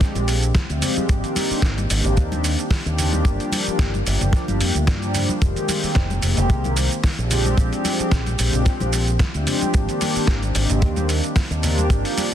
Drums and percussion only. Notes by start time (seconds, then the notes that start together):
0.01 kick, snare, closed hi-hat, shaker
0.15 closed hi-hat, high conga, shaker
0.28 open hi-hat, shaker
0.43 closed hi-hat, shaker
0.55 kick, snare, closed hi-hat, high conga, shaker
0.70 closed hi-hat, shaker
0.82 open hi-hat, low conga, shaker
0.97 closed hi-hat, high conga, shaker
1.09 kick, closed hi-hat, shaker
1.24 closed hi-hat, shaker
1.36 open hi-hat, high conga, shaker
1.51 shaker
1.62 kick, snare, shaker
1.78 closed hi-hat, high conga, shaker
1.90 open hi-hat, shaker
2.04 closed hi-hat, low conga, shaker
2.17 kick, closed hi-hat, shaker
2.32 closed hi-hat, high conga, shaker
2.44 open hi-hat, shaker
2.59 closed hi-hat, shaker
2.71 kick, snare, open hi-hat, high conga, shaker
2.86 closed hi-hat, shaker
2.98 open hi-hat, low conga, shaker
3.13 closed hi-hat, high conga, shaker
3.25 kick, closed hi-hat, shaker
3.40 closed hi-hat, shaker
3.52 open hi-hat, high conga, shaker
3.67 closed hi-hat, shaker
3.79 kick, snare, closed hi-hat, shaker
3.94 closed hi-hat, high conga, shaker
4.07 open hi-hat, shaker
4.21 closed hi-hat, low conga, shaker
4.33 kick, snare, closed hi-hat, shaker
4.48 closed hi-hat, high conga, shaker
4.61 open hi-hat, shaker
4.75 closed hi-hat, shaker
4.87 kick, snare, closed hi-hat, high conga, shaker
5.02 closed hi-hat, shaker
5.14 open hi-hat, low conga, shaker
5.29 closed hi-hat, high conga, shaker
5.42 kick, closed hi-hat, shaker
5.56 closed hi-hat, shaker
5.68 open hi-hat, high conga, shaker
5.83 shaker
5.95 kick, snare, closed hi-hat, shaker
6.10 closed hi-hat, high conga, shaker
6.22 open hi-hat, shaker
6.37 closed hi-hat, low conga, shaker
6.50 kick, closed hi-hat, shaker
6.64 closed hi-hat, high conga, shaker
6.77 open hi-hat, shaker
6.91 closed hi-hat, shaker
7.04 kick, snare, open hi-hat, high conga, shaker
7.19 closed hi-hat, shaker
7.31 open hi-hat, low conga, shaker
7.45 closed hi-hat, high conga, shaker
7.58 kick, closed hi-hat, shaker
7.73 closed hi-hat, shaker
7.85 open hi-hat, high conga, shaker
8.00 closed hi-hat, shaker
8.11 kick, snare, closed hi-hat, shaker
8.26 closed hi-hat, high conga, shaker
8.39 open hi-hat, shaker
8.53 closed hi-hat, low conga, shaker
8.65 kick, snare, closed hi-hat, shaker
8.81 closed hi-hat, high conga, shaker
8.93 open hi-hat, shaker
9.07 closed hi-hat, shaker
9.19 kick, snare, closed hi-hat, high conga, shaker
9.34 closed hi-hat, shaker
9.47 open hi-hat, low conga, shaker
9.61 closed hi-hat, high conga, shaker
9.74 kick, closed hi-hat, shaker
9.89 closed hi-hat, shaker
10.01 open hi-hat, high conga, shaker
10.16 shaker
10.27 kick, snare, closed hi-hat, shaker
10.43 closed hi-hat, high conga, shaker
10.55 open hi-hat, shaker
10.69 closed hi-hat, low conga, shaker
10.82 kick, closed hi-hat, shaker
10.96 closed hi-hat, high conga, shaker
11.09 open hi-hat, shaker
11.24 closed hi-hat, shaker
11.36 kick, snare, open hi-hat, high conga, shaker
11.51 closed hi-hat, shaker
11.63 open hi-hat, low conga, shaker
11.78 closed hi-hat, high conga, shaker
11.90 kick, closed hi-hat, shaker
12.05 open hi-hat, shaker
12.17 open hi-hat, high conga, shaker